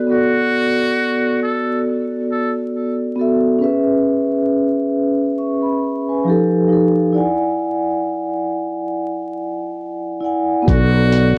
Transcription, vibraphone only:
Already playing: B3 F#4 A4 D5
0.07 B3 F#4 A4
0.12 D5
3.16 B3 F#4 A4
3.21 E5
3.59 C#4 G#4 B4
3.64 E5
5.39 E5 C#6
5.62 B5
6.09 B4 G#5
6.24 F3 D#4 G4
6.29 A4
6.67 F3 D#4 G4
6.73 A4
7.12 E4 D5 F#5
7.18 G#5
10.21 E4 D5 F#5
10.26 G#5
10.62 B3 F#4 A4
10.68 D5
11.11 B3 F#4 A4
11.17 D5

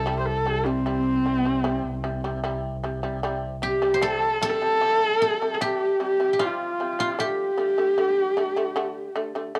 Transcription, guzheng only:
3.63 G4
3.94 C5
4.02 A4
4.43 A4
5.22 A4
5.61 G4
6.33 G4
6.39 F4
7.00 F4
7.20 G4

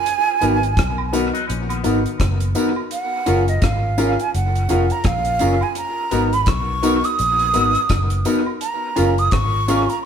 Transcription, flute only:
Already playing: G#5
2.92 F#5
3.49 D#5
3.64 F5
4.21 G#5
4.35 F#5
4.92 A#5
5.06 F5
5.63 G#5
5.77 A#5
6.34 B5
6.49 C#6
7.05 D#6
8.62 A#5
9.19 D#6
9.32 C#6
9.89 A#5

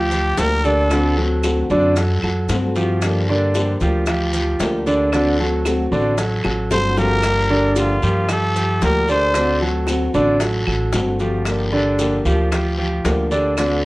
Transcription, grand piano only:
0.12 F3 F4 G4
0.65 D3 D4 D5
0.91 D3 D4 D5
1.17 F#3 F#4 A4
1.71 D3 D4 D5
1.97 F#3 F#4 A4
2.23 F#3 F#4 A4
2.76 F3 F4 G4
3.29 D3 D4 D5
3.82 F3 F4 G4
4.08 F3 F4 G4
4.34 F3 F4 G4
4.87 D3 D4 D5
5.13 D3 D4 D5
5.40 F#3 F#4 A4
5.92 D3 D4 D5
6.18 F#3 F#4 A4
6.45 F#3 F#4 A4
6.98 F3 F4 G4
7.50 D3 D4 D5
8.03 F3 F4 G4
8.30 F3 F4 G4
8.56 F3 F4 G4
9.09 D3 D4 D5
9.35 D3 D4 D5
9.61 F#3 F#4 A4
10.15 D3 D4 D5
10.41 F#3 F#4 A4
10.67 F#3 F#4 A4
11.20 F3 F4 G4
11.73 D3 D4 D5
12.26 F3 F4 G4
12.52 F3 F4 G4
12.78 F3 F4 G4
13.31 D3 D4 D5
13.58 D3 D4 D5

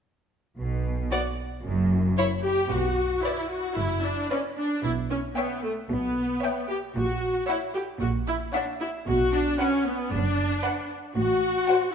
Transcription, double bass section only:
0.58 B1
1.64 F#1
2.71 B1
3.78 F#1
4.84 B1
5.90 B1
6.96 A#1
8.01 A#1
9.07 B1
10.12 F#1
11.16 A1

